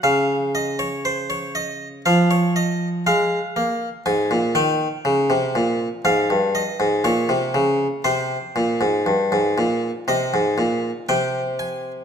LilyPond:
<<
  \new Staff \with { instrumentName = "Harpsichord" } { \time 4/4 \key des \major \tempo 4 = 60 f''8 ees''16 des''16 c''16 des''16 ees''8 f''16 des''16 ees''8 f''4 | aes''8 g''4. f''8 ees''8 des''4 | c''2 ees''4 g''8 aes''8 | }
  \new Staff \with { instrumentName = "Harpsichord" } { \clef bass \time 4/4 \key des \major des2 f4 aes8 bes8 | aes,16 bes,16 ees8 des16 c16 bes,8 aes,16 g,8 aes,16 bes,16 c16 des8 | c8 bes,16 aes,16 g,16 aes,16 bes,8 c16 aes,16 bes,8 c4 | }
>>